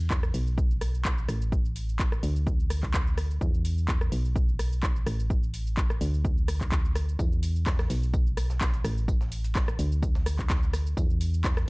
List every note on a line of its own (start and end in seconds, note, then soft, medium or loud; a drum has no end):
0.00 0.32 E2 medium
0.10 kick loud
0.10 clap loud
0.10 shaker soft
0.23 cross-stick medium
0.23 shaker soft
0.34 1.26 B1 medium
0.34 open hi-hat loud
0.34 shaker medium
0.47 shaker soft
0.58 kick loud
0.58 shaker soft
0.71 shaker soft
0.81 cross-stick medium
0.81 open hi-hat loud
0.81 shaker medium
0.94 shaker soft
1.05 kick loud
1.05 clap loud
1.05 shaker soft
1.18 shaker soft
1.29 2.21 A1 medium
1.29 cross-stick medium
1.29 open hi-hat loud
1.29 shaker medium
1.42 shaker soft
1.52 kick loud
1.52 shaker soft
1.65 shaker soft
1.76 open hi-hat loud
1.76 shaker medium
1.89 shaker soft
1.99 kick loud
1.99 clap loud
1.99 shaker soft
2.12 cross-stick medium
2.12 shaker soft
2.23 3.39 D2 medium
2.23 open hi-hat loud
2.23 shaker medium
2.36 shaker soft
2.47 kick loud
2.47 shaker soft
2.60 shaker soft
2.70 cross-stick medium
2.70 open hi-hat loud
2.70 shaker medium
2.83 kick medium
2.83 clap soft
2.83 shaker soft
2.94 kick loud
2.94 clap loud
2.94 shaker soft
3.07 shaker soft
3.18 cross-stick medium
3.18 open hi-hat loud
3.18 shaker medium
3.31 shaker soft
3.41 4.10 E2 medium
3.41 kick loud
3.41 shaker soft
3.54 shaker soft
3.65 open hi-hat loud
3.65 shaker medium
3.78 shaker soft
3.88 kick loud
3.88 clap loud
3.88 shaker soft
4.01 cross-stick medium
4.01 shaker soft
4.12 5.04 B1 medium
4.12 open hi-hat loud
4.12 shaker medium
4.25 shaker soft
4.36 kick loud
4.36 shaker soft
4.49 shaker soft
4.59 cross-stick medium
4.59 open hi-hat loud
4.59 shaker medium
4.72 shaker soft
4.83 kick loud
4.83 clap loud
4.83 shaker soft
4.96 shaker soft
5.06 5.99 A1 medium
5.06 cross-stick medium
5.06 open hi-hat loud
5.06 shaker medium
5.20 shaker soft
5.30 kick loud
5.30 shaker soft
5.43 shaker soft
5.54 open hi-hat loud
5.54 shaker medium
5.67 shaker soft
5.77 kick loud
5.77 clap loud
5.77 shaker soft
5.90 cross-stick medium
5.90 shaker soft
6.01 7.17 D2 medium
6.01 open hi-hat loud
6.01 shaker medium
6.14 shaker soft
6.25 kick loud
6.25 shaker soft
6.38 shaker soft
6.48 cross-stick medium
6.48 open hi-hat loud
6.48 shaker medium
6.61 kick medium
6.61 clap soft
6.61 shaker soft
6.72 kick loud
6.72 clap loud
6.72 shaker soft
6.85 shaker soft
6.96 cross-stick medium
6.96 open hi-hat loud
6.96 shaker medium
7.09 shaker soft
7.19 7.88 E2 medium
7.19 kick loud
7.19 tambourine medium
7.19 shaker soft
7.32 shaker soft
7.43 open hi-hat loud
7.43 tambourine medium
7.43 shaker medium
7.56 shaker soft
7.66 kick loud
7.66 snare loud
7.66 clap loud
7.66 tambourine medium
7.66 shaker soft
7.79 cross-stick medium
7.79 snare medium
7.79 shaker soft
7.90 8.82 B1 medium
7.90 open hi-hat medium
7.90 open hi-hat loud
7.90 shaker medium
8.03 shaker soft
8.14 kick loud
8.14 tambourine medium
8.14 shaker soft
8.27 shaker soft
8.37 cross-stick medium
8.37 open hi-hat loud
8.37 tambourine medium
8.37 shaker medium
8.50 snare soft
8.50 shaker soft
8.61 kick loud
8.61 snare loud
8.61 clap loud
8.61 tambourine medium
8.61 shaker soft
8.74 closed hi-hat soft
8.74 shaker soft
8.84 9.77 A1 medium
8.84 cross-stick medium
8.84 open hi-hat loud
8.84 tambourine medium
8.84 shaker medium
8.98 shaker soft
9.08 kick loud
9.08 tambourine medium
9.08 shaker soft
9.21 snare soft
9.21 shaker soft
9.32 open hi-hat loud
9.32 tambourine medium
9.32 shaker medium
9.44 closed hi-hat soft
9.44 shaker soft
9.55 kick loud
9.55 snare loud
9.55 clap loud
9.55 tambourine medium
9.55 shaker soft
9.68 cross-stick medium
9.68 shaker soft
9.79 10.95 D2 medium
9.79 open hi-hat loud
9.79 tambourine medium
9.79 shaker medium
9.92 shaker soft
10.03 kick loud
10.03 tambourine medium
10.03 shaker soft
10.15 snare soft
10.15 shaker soft
10.26 cross-stick medium
10.26 open hi-hat loud
10.26 tambourine medium
10.26 shaker medium
10.39 kick medium
10.39 clap soft
10.39 shaker soft
10.50 kick loud
10.50 snare loud
10.50 clap loud
10.50 tambourine medium
10.50 shaker soft
10.63 shaker soft
10.73 cross-stick medium
10.73 open hi-hat loud
10.73 tambourine medium
10.73 shaker medium
10.87 shaker soft
10.97 11.66 E2 medium
10.97 kick loud
10.97 tambourine medium
10.97 shaker soft
11.10 shaker soft
11.21 open hi-hat medium
11.21 tambourine medium
11.21 shaker medium
11.34 shaker soft
11.44 kick loud
11.44 snare loud
11.44 clap loud
11.44 tambourine medium
11.44 shaker soft
11.57 cross-stick medium
11.57 snare medium
11.57 shaker soft